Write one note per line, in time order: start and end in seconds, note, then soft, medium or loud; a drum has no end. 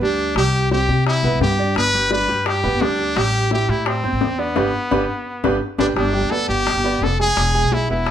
0.01 0.34 D2 medium
0.01 0.30 G3 medium
0.01 0.34 D4 medium
0.01 0.30 G4 medium
0.35 0.86 C2 loud
0.35 0.65 G3 medium
0.35 0.65 G4 medium
0.35 0.69 G4 loud
0.35 high bongo medium
0.71 0.86 C4 medium
0.71 1.04 G4 medium
0.71 0.86 C5 medium
0.71 high bongo medium
0.89 1.22 C3 medium
0.89 1.18 G4 medium
0.89 1.18 G5 medium
0.89 high bongo soft
1.07 1.39 E4 medium
1.07 high bongo medium
1.23 1.31 B1 medium
1.23 1.53 B3 medium
1.23 1.53 B4 medium
1.23 high bongo soft
1.32 1.40 C2 medium
1.41 1.74 G2 medium
1.41 1.74 G4 medium
1.41 high bongo soft
1.41 low bongo medium
1.58 1.88 D4 medium
1.58 1.88 D5 medium
1.58 high bongo soft
1.76 2.26 G1 loud
1.76 2.09 B4 loud
1.76 high bongo medium
1.94 2.08 G3 medium
1.94 2.08 G4 medium
2.11 2.26 D4 medium
2.11 2.49 B4 medium
2.11 2.26 D5 medium
2.11 high bongo medium
2.28 2.62 G2 medium
2.28 2.57 G3 medium
2.28 2.57 G4 medium
2.28 high bongo soft
2.46 2.83 G4 medium
2.46 high bongo medium
2.64 2.72 E1 medium
2.64 2.78 B3 medium
2.64 2.78 B4 medium
2.64 high bongo soft
2.72 2.81 G1 medium
2.81 3.14 D2 medium
2.81 3.10 G3 medium
2.81 3.19 D4 medium
2.81 3.10 G4 medium
2.81 high bongo soft
2.81 low bongo medium
2.99 high bongo soft
3.16 3.66 A1 loud
3.16 3.45 G3 medium
3.16 3.45 G4 medium
3.16 3.52 G4 loud
3.16 high bongo medium
3.51 3.66 E4 medium
3.51 3.71 G4 medium
3.51 3.66 E5 medium
3.51 high bongo medium
3.69 4.02 A2 medium
3.69 3.88 E4 medium
3.69 3.98 G4 medium
3.69 3.98 G5 medium
3.69 high bongo soft
3.86 4.41 C4 medium
3.86 high bongo medium
4.03 4.12 G1 medium
4.03 4.32 C4 medium
4.03 4.32 C5 medium
4.03 high bongo soft
4.13 4.20 A1 medium
4.21 4.54 E2 medium
4.21 high bongo soft
4.21 low bongo medium
4.38 5.62 B3 medium
4.38 4.53 D4 medium
4.38 4.53 D5 medium
4.38 high bongo soft
4.56 4.69 G1 medium
4.56 4.68 D4 medium
4.56 4.67 G4 medium
4.56 4.67 B4 medium
4.56 low bongo loud
4.91 5.04 G1 medium
4.91 5.02 D4 medium
4.91 5.03 G4 medium
4.91 5.02 B4 loud
4.91 low bongo medium
5.44 5.57 G1 medium
5.44 5.55 D4 medium
5.44 5.55 G4 loud
5.44 5.55 B4 medium
5.44 low bongo loud
5.78 5.92 G1 medium
5.78 5.90 D4 medium
5.78 5.87 D4 medium
5.78 5.90 G4 medium
5.78 5.90 B4 medium
5.78 low bongo medium
5.96 6.21 G1 medium
5.96 6.11 G3 medium
5.96 6.33 D4 medium
5.96 6.11 G4 medium
5.96 6.11 G5 medium
5.96 high bongo medium
6.14 6.28 G3 medium
6.14 6.28 G4 medium
6.14 6.28 G5 medium
6.23 6.48 D2 medium
6.31 6.60 B3 medium
6.31 6.48 A4 loud
6.31 6.60 B4 medium
6.31 6.60 D5 medium
6.31 high bongo soft
6.48 6.74 G1 medium
6.48 7.05 G4 loud
6.48 high bongo soft
6.67 6.81 G3 medium
6.67 6.81 G4 medium
6.67 6.81 G5 medium
6.67 high bongo medium
6.75 7.00 G1 medium
6.84 7.13 B3 medium
6.84 7.13 B4 medium
6.84 7.14 D5 medium
6.84 high bongo soft
7.01 7.35 F1 medium
7.01 7.20 A4 medium
7.01 high bongo soft
7.01 low bongo medium
7.20 7.48 G#3 medium
7.20 7.48 G#4 medium
7.20 7.75 G#4 loud
7.20 7.48 G#5 medium
7.20 high bongo soft
7.37 7.62 E1 loud
7.37 high bongo medium
7.55 7.83 G#3 medium
7.55 7.83 G#4 medium
7.55 7.83 G#5 medium
7.63 7.88 B1 medium
7.72 7.90 E4 medium
7.72 high bongo medium
7.89 8.11 E1 medium
7.89 8.11 B3 medium
7.89 8.11 E4 medium
7.89 8.11 B4 medium
7.89 8.11 E5 medium
7.89 high bongo soft
8.06 high bongo medium